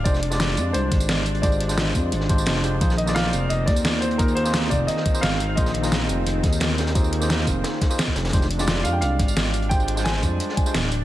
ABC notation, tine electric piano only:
X:1
M:4/4
L:1/16
Q:1/4=174
K:Fdor
V:1 name="Tine electric piano"
[A,DFGc]2 z [A,DFGd]12- [A,DFGd] | [A,DFGc]3 [A,DFGc]6- [A,DFGc] [A,DFGc]4 [A,DFGc]2 | [B,EFAc]2 z [B,EFAd]12- [B,EFAd] | [B,EFAc]3 [B,EFAc]8 [B,EFAc] z4 |
[B,EFAc]2 z [B,EFAe]12- [B,EFAe] | [B,EFAc]3 [B,EFAc]8 [B,EFAc] z4 | [A,DFGc]2 z [A,DFGd]12- [A,DFGd] | [A,DFGc]3 [G,A,DFc]8 [A,DFGc] z4 |]